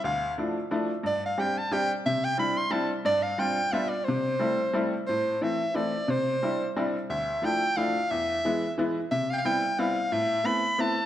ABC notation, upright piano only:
X:1
M:3/4
L:1/8
Q:"Swing" 1/4=179
K:C
V:1 name="Upright piano"
D,,2 [F,A,DE] z [F,A,DE] z | G,,2 [G,CDG] z [G,CDG] z | C,2 [G,CDE] z [G,CDE] z | G,,2 [G,CDF] z [G,B,DF] z |
C,2 [G,A,CE] z [G,A,CE] z | [K:Am] A,,2 [E,A,CE] z [E,A,CE] z | C,2 [G,CDE] z [G,CDE] z | D,,2 [F,A,DE] z [F,A,DE] z |
E,,2 [E,^G,B,E] z [E,G,B,E] z | C,2 [G,B,CE] z [G,B,CE] z | A,,2 [A,B,CE] z [A,B,CE] z |]